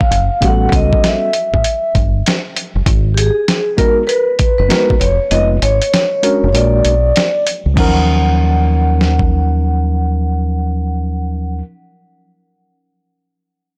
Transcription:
0.00 0.45 F5 loud
0.00 kick medium
0.11 0.28 F#1 medium
0.11 closed hi-hat medium
0.41 0.68 A1 loud
0.41 1.29 G3 medium
0.41 1.29 B3 medium
0.41 1.29 C#4 medium
0.41 1.29 F#4 medium
0.41 0.51 G4 medium
0.41 kick loud
0.41 closed hi-hat medium
0.45 1.33 A4 medium
0.45 0.75 F#5 medium
0.72 0.89 C#2 loud
0.72 1.06 D#5 loud
0.72 kick medium
0.72 closed hi-hat medium
0.93 kick medium
1.04 1.93 E5 medium
1.04 snare medium
1.04 closed hi-hat medium
1.33 closed hi-hat medium
1.54 1.63 A1 medium
1.54 kick medium
1.64 closed hi-hat medium
1.95 2.21 G1 medium
1.95 kick medium
1.95 closed hi-hat medium
2.26 snare loud
2.26 closed hi-hat medium
2.56 closed hi-hat medium
2.75 2.85 F#1 medium
2.86 3.29 G#1 loud
2.86 kick loud
2.86 closed hi-hat medium
3.14 3.18 G4 medium
3.14 closed hi-hat medium
3.19 3.75 G#4 medium
3.48 snare medium
3.48 closed hi-hat medium
3.77 4.02 G#3 medium
3.77 4.02 B3 medium
3.77 4.02 D#4 medium
3.77 4.02 F#4 medium
3.77 4.03 A#4 medium
3.77 3.90 A#4 medium
3.77 kick medium
3.77 closed hi-hat medium
4.07 4.10 A#4 medium
4.07 4.55 B4 medium
4.07 closed hi-hat medium
4.39 kick medium
4.39 closed hi-hat medium
4.58 4.69 F#1 medium
4.58 5.02 B4 medium
4.69 4.94 G#3 medium
4.69 4.94 B3 medium
4.69 4.94 D#4 medium
4.69 4.94 F#4 medium
4.69 4.95 A#4 medium
4.69 snare loud
4.69 closed hi-hat medium
4.90 kick medium
5.00 5.18 F1 medium
5.00 5.32 C#5 medium
5.00 closed hi-hat medium
5.31 5.58 F1 loud
5.31 5.56 G#3 medium
5.31 5.56 B3 medium
5.31 5.56 D#4 medium
5.31 5.56 F4 medium
5.31 5.56 B4 medium
5.31 5.45 D#5 loud
5.31 closed hi-hat medium
5.62 5.79 G#1 medium
5.62 6.51 C#5 loud
5.62 closed hi-hat medium
5.82 closed hi-hat medium
5.94 snare loud
5.94 closed hi-hat medium
6.22 6.47 G#3 medium
6.22 6.47 C#4 medium
6.22 6.48 D4 medium
6.22 6.48 F#4 medium
6.22 6.48 A#4 medium
6.22 closed hi-hat medium
6.44 6.55 F1 medium
6.53 6.80 A#1 loud
6.53 6.92 G#3 medium
6.53 6.93 A#3 medium
6.53 6.93 D4 medium
6.53 6.93 F#4 medium
6.53 6.93 A#4 medium
6.53 6.56 C#5 medium
6.53 7.43 D5 medium
6.53 closed hi-hat medium
6.85 7.11 B1 medium
6.85 closed hi-hat medium
7.16 snare loud
7.16 closed hi-hat medium
7.47 closed hi-hat medium
7.66 7.75 C#2 medium
7.74 11.61 D#2 loud
7.74 11.58 F#3 medium
7.74 11.60 C#4 medium
7.74 11.61 D#4 medium
7.74 kick loud
7.74 crash medium
7.78 11.62 F3 medium
7.78 11.64 A#4 medium
7.78 11.62 F#5 medium
9.01 snare medium
9.19 kick medium

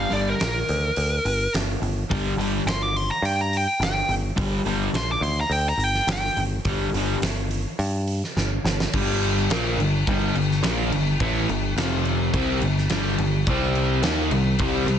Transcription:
0.00 0.11 F5 medium
0.10 0.33 G1 medium
0.10 0.33 G2 medium
0.10 0.34 D3 medium
0.10 0.34 G3 loud
0.10 0.26 D5 medium
0.10 open hi-hat medium
0.30 0.42 A#4 medium
0.40 0.62 A#1 medium
0.40 1.52 A#4 loud
0.40 snare loud
0.40 open hi-hat medium
0.69 0.90 D2 medium
0.69 open hi-hat medium
0.96 1.18 D2 medium
0.96 open hi-hat medium
1.25 1.46 G1 medium
1.25 open hi-hat medium
1.54 1.75 G1 medium
1.54 snare loud
1.54 open hi-hat medium
1.82 2.03 G1 medium
1.82 open hi-hat medium
2.10 2.32 G1 loud
2.10 2.33 G2 medium
2.10 2.33 D3 medium
2.10 2.33 G3 loud
2.10 kick loud
2.10 open hi-hat medium
2.37 2.59 G1 medium
2.37 2.61 G2 medium
2.37 2.61 D3 medium
2.37 2.62 G3 loud
2.37 open hi-hat medium
2.66 3.09 G1 medium
2.66 2.82 C6 loud
2.66 snare loud
2.66 open hi-hat medium
2.82 2.96 D6 medium
2.96 3.10 C6 medium
2.96 open hi-hat medium
3.11 3.24 A#5 medium
3.22 3.65 G2 medium
3.22 3.38 G5 medium
3.22 open hi-hat medium
3.41 3.53 A#5 loud
3.53 open hi-hat medium
3.57 3.82 G5 medium
3.80 4.01 G1 loud
3.80 snare loud
3.80 open hi-hat medium
3.84 4.10 G5 loud
4.09 4.30 G1 medium
4.09 open hi-hat medium
4.36 4.59 G1 medium
4.36 4.60 G2 medium
4.36 4.60 D3 medium
4.36 4.60 G3 loud
4.36 kick loud
4.36 open hi-hat medium
4.66 4.87 G1 medium
4.66 4.88 G2 medium
4.66 4.89 D3 loud
4.66 4.89 G3 loud
4.66 open hi-hat medium
4.93 5.15 A#1 medium
4.93 5.09 C6 medium
4.93 snare loud
4.93 open hi-hat medium
5.12 5.23 D6 medium
5.21 5.43 D2 medium
5.21 5.37 C6 loud
5.21 open hi-hat medium
5.41 5.52 A#5 loud
5.49 5.71 D2 medium
5.49 5.66 G5 loud
5.49 open hi-hat medium
5.69 5.84 A#5 loud
5.77 5.99 G1 medium
5.77 open hi-hat medium
5.84 6.09 G5 medium
5.94 snare soft
6.07 6.29 G1 medium
6.07 snare loud
6.07 open hi-hat medium
6.13 6.38 G5 loud
6.37 6.58 G1 medium
6.37 open hi-hat medium
6.65 6.86 G1 medium
6.65 6.88 G2 medium
6.65 6.88 D3 loud
6.65 6.89 G3 loud
6.65 kick loud
6.65 open hi-hat medium
6.93 7.15 G1 medium
6.93 7.17 G2 loud
6.93 7.17 D3 medium
6.93 7.18 G3 loud
6.93 open hi-hat medium
7.22 7.64 G1 medium
7.22 snare loud
7.22 open hi-hat medium
7.51 open hi-hat medium
7.79 8.21 G2 loud
7.79 open hi-hat medium
8.07 open hi-hat medium
8.24 snare soft
8.37 8.57 G1 medium
8.37 snare medium
8.64 8.85 G1 medium
8.64 snare medium
8.80 snare medium
8.93 9.46 G1 medium
8.93 9.49 G2 loud
8.93 9.49 D3 medium
8.93 9.49 G3 loud
8.93 kick loud
8.93 crash loud
8.93 crash medium
9.23 crash medium
9.50 9.76 A#1 medium
9.50 9.78 A#2 loud
9.50 9.78 F3 loud
9.50 9.78 A#3 loud
9.50 snare loud
9.50 crash medium
9.77 10.03 G1 medium
9.77 10.02 G2 medium
9.77 10.02 D3 medium
9.77 crash medium
10.07 10.33 G1 loud
10.07 10.34 G2 loud
10.07 10.34 D3 loud
10.07 10.35 G3 loud
10.07 kick loud
10.07 crash medium
10.35 10.61 G1 medium
10.35 10.58 G2 medium
10.35 10.58 D3 medium
10.35 crash medium
10.51 snare soft
10.63 10.89 A#1 loud
10.63 10.90 A#2 medium
10.63 10.90 F3 medium
10.63 10.91 A#3 loud
10.63 snare loud
10.63 crash loud
10.90 11.17 G1 medium
10.90 11.14 G2 medium
10.90 11.14 D3 medium
10.90 crash medium
11.20 11.46 A1 medium
11.20 11.47 A2 loud
11.20 11.48 E3 loud
11.20 11.48 A3 loud
11.20 kick loud
11.20 crash medium
11.49 11.75 G1 medium
11.49 11.71 G2 medium
11.49 11.71 D3 medium
11.49 crash medium
11.76 12.29 F1 loud
11.76 12.33 F2 loud
11.76 12.32 C3 loud
11.76 12.33 F3 loud
11.76 snare loud
11.76 crash medium
12.05 crash medium
12.33 12.60 C2 loud
12.33 12.61 C3 loud
12.33 12.61 G3 loud
12.33 12.61 C4 loud
12.33 kick loud
12.33 crash medium
12.61 12.88 G1 medium
12.61 12.84 G2 medium
12.61 12.84 D3 medium
12.61 crash medium
12.78 snare soft
12.90 13.16 G1 loud
12.90 13.17 G2 medium
12.90 13.18 D3 loud
12.90 13.18 G3 loud
12.90 snare loud
12.90 crash medium
13.18 13.44 G1 medium
13.18 13.41 G2 medium
13.18 13.41 D3 medium
13.18 crash medium
13.47 14.00 C2 loud
13.47 14.03 C3 medium
13.47 14.03 G3 loud
13.47 14.04 C4 loud
13.47 kick loud
13.47 crash medium
13.75 crash medium
14.02 14.29 D#2 loud
14.02 14.31 D#3 medium
14.02 14.31 A#3 loud
14.02 14.31 D#4 loud
14.02 snare loud
14.02 crash medium
14.31 14.57 C2 medium
14.31 14.54 C3 medium
14.31 14.55 G3 medium
14.31 crash medium
14.59 14.86 C2 loud
14.59 14.87 C3 loud
14.59 14.87 G3 loud
14.59 14.88 C4 loud
14.59 kick loud
14.59 crash medium
14.86 14.99 C2 medium
14.86 14.99 C3 medium
14.86 14.99 G3 medium
14.86 crash medium

